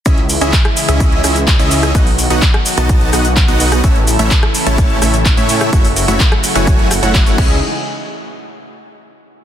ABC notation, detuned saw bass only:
X:1
M:4/4
L:1/16
Q:1/4=127
K:C#m
V:1 name="Detuned saw bass" clef=bass
C,,3 C,, z3 C,,3 C,,3 C,,3 | B,,,3 B,,, z3 B,,,3 B,,,3 B,,,3 | A,,,3 A,,, z3 A,,,3 A,,,3 A,,3 | F,,,3 F,,, z3 F,,,4 F,,,2 F,,, C,,2 |
z16 |]